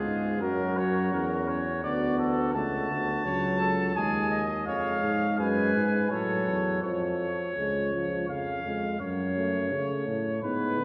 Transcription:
Already playing: G#3 F4 G#4
0.06 G#2
0.41 F#2 F#3 F#4 A#4
0.77 C#5
1.12 E2 C#4 A#4
1.48 C#5
1.84 D2 B3 F#4 D5
2.18 A4
2.54 C#2 A3 F#4 A5
2.90 D2
3.25 C#2 F#3 C#5
3.60 A4
3.95 D#2 G#3 G#4 G#5
4.31 D#5
4.66 F2 G#3 C#5 F5
5.03 G#2
5.39 F#2 B4 G#5
5.75 G#2
6.10 A2 F#3 A4 C#5
6.47 E2
6.83 F2 F3 C#5
7.56 C#2 G#3
7.94 F3
8.28 F2 C#3 F5
8.65 F2 G#3
9.00 F#2 F#3 C#5
9.37 A3
9.72 C#3 A3
10.07 A2
10.42 G#2 B3 B4
10.78 D3

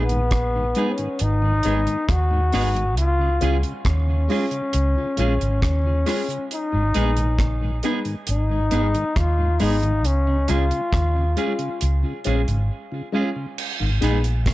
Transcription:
Already playing: A#1
0.04 B3
0.09 G#2 D#3, closed hi-hat
0.31 kick, cross-stick, closed hi-hat
0.55 G#2 D#3
0.75 G#3 B3 D#4 G#4, closed hi-hat
0.93 C#4
0.98 G#2 D#3, closed hi-hat
1.19 G#1 D#4, closed hi-hat
1.42 G#2 D#3
1.63 G#1 G#3 B3 D#4 G#4, closed hi-hat
1.87 G#2 D#3, closed hi-hat
2.09 D#2 F#4, kick, cross-stick, closed hi-hat
2.31 G#2 D#3
2.52 G#1 G#3 B3 D#4 G#4, cross-stick, open hi-hat
2.75 G#2 D#3, muted clean electric guitar stroke, closed hi-hat
2.97 C#2 F4, closed hi-hat
3.19 C#3
3.41 C#2 G#3 C#4 F4 G#4, closed hi-hat
3.63 C#3, closed hi-hat
3.85 D#2 C#4, kick, cross-stick, closed hi-hat
4.07 C#3
4.28 G#3 C#4 F4 G#4, open hi-hat
4.51 C#3, closed hi-hat
4.73 C#2, closed hi-hat
4.96 C#3 F4 G#4
5.17 A#1 G#3 C#4 F4 G#4, closed hi-hat
5.21 G#4
5.39 G#1 C#3, closed hi-hat
5.62 D#2 C#4, kick, cross-stick, closed hi-hat
5.83 C#3 F4 G#4
6.06 G#3 C#4 F4 G#4, cross-stick, open hi-hat
6.28 C#3, closed hi-hat
6.51 D#4, closed hi-hat
6.72 G#1 G#2 D#3
6.94 A#1 G#3 B3 D#4 G#4, closed hi-hat
7.17 G#2 D#3, closed hi-hat
7.39 kick, cross-stick, closed hi-hat
7.61 G#2 D#3
7.83 G#3 B3 D#4 G#4, closed hi-hat
8.05 G#2 D#3, closed hi-hat
8.27 G#1 D#4, closed hi-hat
8.50 G#2 D#3
8.71 G#1 G#3 B3 D#4 G#4, closed hi-hat
8.94 G#2 D#3, closed hi-hat
9.16 D#2 F4, kick, cross-stick, closed hi-hat
9.38 G#2 D#3
9.60 G#1 G#3 B3 D#4 G#4, open hi-hat
9.82 G#2 D#3, muted clean electric guitar stroke, closed hi-hat
10.05 C#2 C#4, closed hi-hat
10.27 C#3
10.48 C#2 G#3 C#4 F4 G#4, closed hi-hat
10.71 C#3, closed hi-hat
10.93 D#2, kick, cross-stick, closed hi-hat
11.15 C#3
11.37 G#3 C#4 F4 G#4, closed hi-hat
11.58 C#3, closed hi-hat
11.81 C#2, closed hi-hat
12.03 C#3 F4 G#4
12.24 A#1 G#3 C#4 F4 G#4, closed hi-hat
12.48 G#1 C#3, closed hi-hat
12.91 C#3 F4 G#4
13.12 G#3 C#4 F4 G#4
13.36 C#3
13.58 crash
13.80 G#1 G#2 D#3
14.01 A#1 G#3 B3 D#4 G#4, closed hi-hat
14.24 closed hi-hat
14.46 kick, cross-stick, closed hi-hat
14.50 B3

